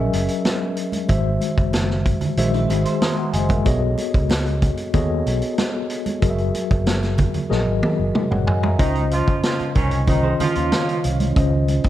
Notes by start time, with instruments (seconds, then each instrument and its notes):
Already playing: tine electric piano F#3 C#4 G#4 A#4 D#5 E5
0.00 celesta G#5
0.13 fingered electric bass F#1, closed hi-hat, muted conga
0.28 closed hi-hat
0.45 snare, closed hi-hat, high conga
0.77 closed hi-hat
0.92 closed hi-hat, high conga
1.08 fingered electric bass G#1, tine electric piano D#3 G#3 F#4 C5 E5, kick, closed hi-hat, muted conga
1.41 closed hi-hat, muted conga
1.58 fingered electric bass F#1, kick, closed hi-hat
1.73 snare, closed hi-hat, high conga
1.90 snare
2.06 kick, closed hi-hat
2.21 closed hi-hat, low conga
2.37 fingered electric bass A#1, tine electric piano D#3 G#3 F#4 C5 E5, closed hi-hat
2.54 clean electric guitar C4 E4, closed hi-hat
2.69 fingered electric bass G#1, clean electric guitar E4 G#4, closed hi-hat, muted conga
2.85 clean electric guitar G#4 C5, closed hi-hat
3.02 tine electric piano A#5 D#6, snare, closed hi-hat, high conga
3.18 tine electric piano F#5 C6
3.33 fingered electric bass F#1, tine electric piano D#5 G#5, closed hi-hat
3.49 tine electric piano A#4 E5, kick, closed hi-hat, high conga
3.65 fingered electric bass B1, tine electric piano B3 F#4 G#4 A4 C#5 D#5, kick, closed hi-hat, muted conga
3.98 closed hi-hat, muted conga
4.14 fingered electric bass C#2, kick, closed hi-hat
4.29 snare, closed hi-hat, high conga
4.46 closed hi-hat
4.62 kick, closed hi-hat
4.77 closed hi-hat
4.94 fingered electric bass D#2, tine electric piano B3 F#4 G#4 A4 C#5 D#5, kick, closed hi-hat, low conga
5.26 fingered electric bass B1, closed hi-hat, muted conga
5.42 closed hi-hat
5.58 snare, closed hi-hat, high conga
5.90 closed hi-hat
6.06 closed hi-hat, high conga
6.22 fingered electric bass F#1, tine electric piano F#3 F#4 G#4 A#4 D#5, kick, closed hi-hat, muted conga
6.30 tine electric piano E5
6.38 closed hi-hat
6.55 closed hi-hat, muted conga
6.71 fingered electric bass F#1, kick, closed hi-hat
6.87 snare, closed hi-hat, high conga
7.02 snare, closed hi-hat
7.18 kick, closed hi-hat, low conga
7.34 closed hi-hat, low conga
7.49 fingered electric bass A#1, tine electric piano F#3 F#4 G#4 A#4 D#5, snare
7.67 fingered electric bass G#1
7.83 high tom, muted conga
7.99 fingered electric bass F#1
8.15 mid tom, high conga
8.31 fingered electric bass F#1, tine electric piano C#5 F#5, mid tom
8.47 fingered electric bass F#2, tine electric piano D#5 G#5, floor tom
8.63 tine electric piano E5 A#5, floor tom, high conga
8.79 fingered electric bass C#2, tine electric piano C#3 C#4 F4 C5 D#5, horn section D#3 D#4, kick, closed hi-hat, muted conga
8.95 closed hi-hat
9.11 horn section F3 F4, closed hi-hat, muted conga
9.27 kick, closed hi-hat
9.43 horn section F3 F4, snare, closed hi-hat, high conga
9.59 muted fingered electric bass stroke, closed hi-hat
9.75 fingered electric bass C2, horn section D#3 C#4, kick, closed hi-hat
9.91 closed hi-hat
10.07 tine electric piano D#3 C#4 F4 C5 D#5, horn section D#3 D#4, kick, closed hi-hat, muted conga, low conga
10.23 clean electric guitar G#4 C5
10.40 horn section F3 F4, clean electric guitar F4 G#4, muted fingered electric bass stroke, closed hi-hat, muted conga, low conga
10.55 fingered electric bass D#2, clean electric guitar C#4 F4, closed hi-hat
10.72 snare, closed hi-hat, high conga
10.89 closed hi-hat
11.04 fingered electric bass C2, closed hi-hat
11.20 closed hi-hat, high conga
11.36 fingered electric bass C#2, tine electric piano C#3 C#4 F4 C5 D#5, kick, closed hi-hat, muted conga
11.68 closed hi-hat, muted conga
11.84 muted fingered electric bass stroke, kick, closed hi-hat